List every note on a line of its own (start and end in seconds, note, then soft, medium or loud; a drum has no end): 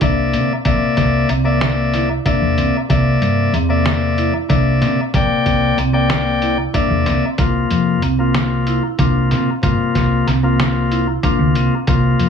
0.01 0.35 C2 medium
0.01 0.52 C3 medium
0.01 0.53 A#3 medium
0.01 0.21 D4 medium
0.01 0.53 D5 medium
0.01 0.53 E5 medium
0.01 kick loud
0.01 closed hi-hat medium
0.33 0.46 C3 medium
0.33 0.53 C4 medium
0.33 closed hi-hat medium
0.65 0.78 A#1 medium
0.65 1.29 C3 medium
0.65 1.29 A#3 medium
0.65 1.29 D5 medium
0.65 1.30 E5 medium
0.65 kick medium
0.65 closed hi-hat medium
0.97 1.23 C2 medium
0.97 kick medium
0.97 snare soft
0.97 closed hi-hat medium
1.29 2.17 C2 medium
1.29 1.69 C4 medium
1.29 closed hi-hat medium
1.44 2.09 C3 medium
1.44 2.09 A#3 medium
1.44 2.09 D5 medium
1.44 2.09 E5 medium
1.61 snare medium
1.61 closed hi-hat medium
1.94 2.13 E4 medium
1.94 snare soft
1.94 closed hi-hat medium
2.25 2.76 C3 medium
2.25 2.77 A#3 medium
2.25 2.46 D4 medium
2.25 2.77 D5 medium
2.25 2.77 E5 medium
2.25 kick medium
2.25 closed hi-hat medium
2.42 2.54 E2 medium
2.57 2.70 C2 medium
2.57 2.78 C4 medium
2.57 closed hi-hat medium
2.89 3.15 C2 medium
2.89 3.53 C3 medium
2.89 3.53 A#3 medium
2.89 3.54 D5 medium
2.89 3.54 E5 medium
2.89 kick medium
2.89 closed hi-hat medium
3.21 3.47 G2 medium
3.21 closed hi-hat soft
3.53 4.29 E2 medium
3.53 3.94 C4 medium
3.53 closed hi-hat medium
3.69 4.33 C3 medium
3.69 4.33 A#3 medium
3.69 4.34 D5 medium
3.69 4.34 E5 medium
3.86 snare loud
3.86 closed hi-hat medium
4.18 4.38 E4 medium
4.18 closed hi-hat soft
4.49 4.83 C2 medium
4.49 5.00 C3 medium
4.49 5.00 A#3 medium
4.49 4.70 D4 medium
4.49 5.01 D5 medium
4.49 5.01 E5 medium
4.49 kick medium
4.49 closed hi-hat medium
4.81 4.94 C3 medium
4.81 5.02 C4 medium
4.81 snare soft
4.81 closed hi-hat medium
5.14 5.26 A#1 medium
5.14 5.78 C3 medium
5.14 5.78 A#3 medium
5.14 5.79 D5 medium
5.14 5.79 G5 medium
5.14 kick medium
5.14 closed hi-hat medium
5.46 5.71 C2 medium
5.46 kick medium
5.46 closed hi-hat medium
5.77 6.66 C2 medium
5.77 6.17 C4 medium
5.77 closed hi-hat medium
5.92 6.57 C3 medium
5.92 6.58 A#3 medium
5.92 6.58 D5 medium
5.92 6.58 G5 medium
6.10 snare loud
6.10 closed hi-hat medium
6.42 6.62 E4 medium
6.42 closed hi-hat soft
6.73 7.25 C3 medium
6.73 7.25 A#3 medium
6.73 6.94 D4 medium
6.73 7.25 D5 medium
6.73 7.26 E5 medium
6.73 kick medium
6.73 closed hi-hat medium
6.90 7.03 E2 medium
7.06 7.19 C2 medium
7.06 7.26 C4 medium
7.06 snare soft
7.06 closed hi-hat medium
7.38 7.64 C2 medium
7.38 8.02 C3 medium
7.38 8.03 A#3 medium
7.38 8.03 F4 medium
7.38 kick medium
7.38 closed hi-hat medium
7.71 7.96 F2 medium
7.71 closed hi-hat medium
8.02 8.78 C2 medium
8.02 8.42 C4 medium
8.02 closed hi-hat medium
8.18 8.82 C3 medium
8.18 8.83 A#3 medium
8.18 8.83 F4 medium
8.35 snare medium
8.35 closed hi-hat medium
8.67 8.86 E4 medium
8.67 closed hi-hat soft
8.98 9.33 C2 medium
8.98 9.50 C3 medium
8.98 9.50 A#3 medium
8.98 9.19 D4 medium
8.98 9.50 F4 medium
8.98 kick medium
8.98 closed hi-hat medium
9.31 9.44 C3 medium
9.31 9.51 C4 medium
9.31 snare soft
9.31 closed hi-hat medium
9.62 9.75 G1 loud
9.62 10.26 C3 medium
9.62 10.27 A#3 medium
9.62 10.27 F4 medium
9.62 kick medium
9.62 closed hi-hat medium
9.95 10.20 C2 medium
9.95 kick medium
9.95 snare soft
9.95 closed hi-hat soft
10.27 11.15 C2 medium
10.27 10.67 C4 medium
10.27 snare soft
10.27 closed hi-hat medium
10.43 11.07 C3 medium
10.43 11.07 A#3 medium
10.43 11.08 F4 medium
10.60 snare medium
10.60 closed hi-hat medium
10.91 11.11 E4 medium
10.91 closed hi-hat medium
11.23 11.74 C3 medium
11.23 11.74 A#3 medium
11.23 11.43 D4 medium
11.23 11.75 F4 medium
11.23 kick medium
11.23 closed hi-hat medium
11.39 11.52 D2 medium
11.55 11.68 C2 medium
11.55 11.75 C4 medium
11.55 closed hi-hat medium
11.87 12.13 C2 medium
11.87 12.29 C3 medium
11.87 12.29 A#3 medium
11.87 12.29 F4 medium
11.87 kick medium
11.87 closed hi-hat medium
12.19 12.29 F2 medium
12.19 closed hi-hat medium